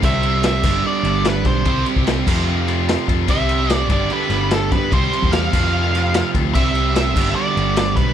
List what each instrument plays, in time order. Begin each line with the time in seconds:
0.03 picked electric bass C2, distorted electric guitar C3 G3 C4 E4, lead electric guitar E5, kick, crash
0.22 distorted electric guitar G3 C4 E4, ride
0.41 distorted electric guitar C3 G3 C4 E4, snare, ride
0.46 lead electric guitar E5
0.62 picked electric bass G1, distorted electric guitar G2 D3 G3 B3 D4, kick, crash
0.82 distorted electric guitar D3 G3 B3 D4
0.87 lead electric guitar D5
1.03 picked electric bass G1, distorted electric guitar G3 B3 D4, ride
1.24 distorted electric guitar G2 D3 G3 B3 D4, lead electric guitar B4, snare, ride
1.45 picked electric bass B1, distorted electric guitar G3 B3 D4, lead electric guitar C5, kick, ride
1.65 picked electric bass C2, distorted electric guitar C3 G3 C4 E4, kick, ride
1.85 distorted electric guitar G3 C4 E4, ride
1.96 picked electric bass C2, kick
2.05 distorted electric guitar C3 G3 C4 E4, snare, ride
2.26 overdriven electric guitar F2 C3, picked electric bass F2, distorted electric guitar F3 A3 C4 F4, kick, crash
2.39 snare
2.47 distorted electric guitar F3 A3 C4 F4
2.68 distorted electric guitar A3 C4 F4, ride
2.88 distorted electric guitar F3 A3 C4 F4, snare, ride
3.08 picked electric bass F2, distorted electric guitar A3 C4 F4, kick, ride
3.28 picked electric bass C2, distorted electric guitar C3 G3 C4 E4, lead electric guitar E5, kick, crash
3.48 distorted electric guitar G3 C4 E4, ride
3.69 distorted electric guitar C3 G3 C4 E4, snare, ride
3.74 lead electric guitar D5
3.89 picked electric bass G1, distorted electric guitar G2 D3 G3 B3 D4, lead electric guitar D5, kick, ride
4.10 distorted electric guitar D3 G3 B3 D4, lead electric guitar B4, ride
4.29 picked electric bass G1, distorted electric guitar G3 B3 D4, snare, ride
4.51 distorted electric guitar G2 D3 G3 B3, lead electric guitar A4, snare, ride
4.55 distorted electric guitar D4
4.71 picked electric bass G2, distorted electric guitar G3 B3 D4, lead electric guitar B4, kick, ride
4.92 picked electric bass C2, distorted electric guitar C3 G3 C4 E4, lead electric guitar C5, kick, ride
5.12 distorted electric guitar G3 C4 E4, ride
5.22 picked electric bass E2, kick
5.32 distorted electric guitar C3 G3 C4 E4, lead electric guitar F5, snare, ride
5.51 overdriven electric guitar F2 C3, picked electric bass F2, distorted electric guitar C4 F4, kick, crash
5.55 distorted electric guitar F3 A3
5.65 snare
5.73 distorted electric guitar F3 A3 C4 F4
5.92 distorted electric guitar A3 C4 F4, snare, ride
6.13 distorted electric guitar F3 A3 C4 F4, snare, ride
6.34 picked electric bass D2, distorted electric guitar A3 C4 F4, kick, ride
6.53 picked electric bass C2, distorted electric guitar C3 G3 C4 E4, lead electric guitar E5, kick, crash
6.74 distorted electric guitar G3 C4 E4, ride
6.95 distorted electric guitar C3 G3 C4 E4, lead electric guitar E5, snare, ride
7.14 picked electric bass G1, overdriven electric guitar G2, distorted electric guitar D3 G3 B3 D4, kick, crash
7.18 distorted electric guitar G2
7.28 snare
7.35 distorted electric guitar D3 G3 B3 D4, lead electric guitar D5
7.56 picked electric bass G1, distorted electric guitar G3 B3 D4, ride
7.76 distorted electric guitar G2 D3 G3 B3 D4, snare, ride
7.96 picked electric bass B1, distorted electric guitar G3 B3 D4, lead electric guitar B4, kick, ride